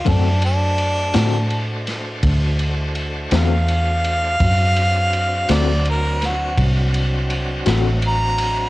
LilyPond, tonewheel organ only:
\new Staff \with { instrumentName = "Tonewheel organ" } { \time 12/8 \key d \dorian \tempo 4. = 55 <a d' fis' c''>1. | <fis c' d' fis'>1. | }